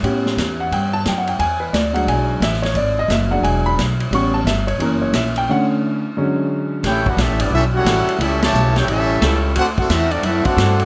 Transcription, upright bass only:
X:1
M:4/4
L:1/8
Q:"Swing" 1/4=176
K:Amix
V:1 name="Upright bass" clef=bass
A,,2 E,,2 G,,2 F,,2 | E,,2 D,,2 B,,,2 A,,,2 | ^G,,,2 F,,,2 E,,,2 B,,,2 | A,,,2 G,,,2 F,,,2 ^A,,,2 |
z8 | [K:A] A,,,2 (3_B,,, A,,, =G,,, =B,,,2 A,,, z | C,,2 B,,,2 A,,,2 C,,2 | D,,2 E,,2 F,, z =G,,2 |]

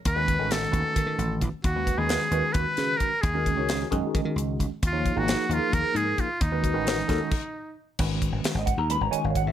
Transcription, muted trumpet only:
X:1
M:7/8
L:1/16
Q:1/4=132
K:Cblyd
V:1 name="Muted trumpet"
=B4 =A8 z2 | ^F3 ^G4- G =B4 ^A2 | A6 z8 | F3 G3 F2 B2 A2 F2 |
^D12 z2 | [K:B] z12 z2 |]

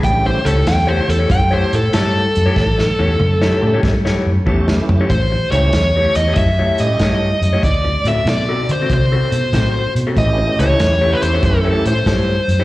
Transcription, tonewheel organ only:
X:1
M:4/4
L:1/8
Q:"Swing" 1/4=95
K:Amix
V:1 name="Tonewheel organ"
[G,A,CEG] z6 z | z3 [G,A,CEG] z2 [E,A,CEG]2 | z [G,A,CEG] z3 [G,A,CEG] z2 | z8 |
[E,A,CEG]4- [E,A,CEG] z3 |]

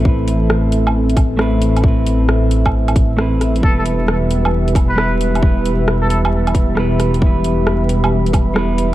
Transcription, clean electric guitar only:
X:1
M:4/4
L:1/8
Q:"Swing 16ths" 1/4=134
K:Am
V:1 name="Clean electric guitar"
[A,CEB]6 [A,CEB]2 | [A,CEB]6 [A,CEB]2 | [G,B,EB]6 [G,B,EB]2 | [G,B,EB]6 [G,B,EB]2 |
[G,B,EB]6 [G,B,EB]2 |]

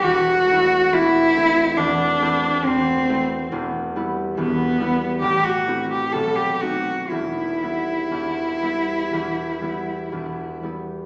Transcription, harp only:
X:1
M:4/4
L:1/8
Q:1/4=66
K:Em
V:1 name="Harp"
[E,,,E,,E] [A,CE] [E,,,E,,] [A,CE] [E,,,E,,] [A,CE] [E,,,E,,] [A,CE] | [E,,,E,,] [G,B,E] [E,,,E,,] [G,B,E] [A,,,A,,] [A,CE] [B,,,B,,] [A,C^D] | [E,,,E,,] [G,B,E] [E,,,E,,] [G,B,E] [E,,,E,,] [G,B,E] [E,,,E,,] [G,B,E] |]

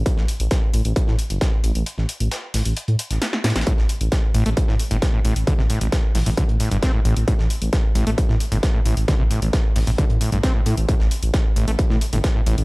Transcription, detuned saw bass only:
X:1
M:4/4
L:1/16
Q:1/4=133
K:Am
V:1 name="Detuned saw bass" clef=bass
z A,,, z A,,, z2 A,,, A,,, z A,, z G,,, z2 A,,, A,,, | z A,,, z A,,, z2 A,,, A,,, z A,, z A,,, z2 A,, A,,, | z A,,, z A,,, z2 A,,, A,,, z A,, z G,,, z2 A,,, A,,, | z A,,, z A,,, z2 A,,, A,,, z A,, z G,,, z2 A,,, A,,, |
z A,,, z A,,, z2 A,,, A,,, z A,, z G,,, z2 A,,, A,,, | z A,,, z A,,, z2 A,,, A,,, z A,, z A,,, z2 A,, A,,, | z A,,, z A,,, z2 A,,, A,,, z A,, z G,,, z2 A,,, A,,, |]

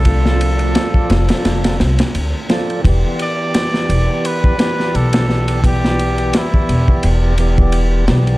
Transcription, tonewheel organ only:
X:1
M:4/4
L:1/8
Q:"Swing 16ths" 1/4=86
K:Ephr
V:1 name="Tonewheel organ"
[F,FAd]4- [F,FAd] z2 [F,FAd] | [E,B,Gd]4- [E,B,Gd] [E,B,Gd]2 [E,B,Gd] | [E,B,Gd]4- [E,B,Gd] [E,B,Gd]2 [E,B,Gd] |]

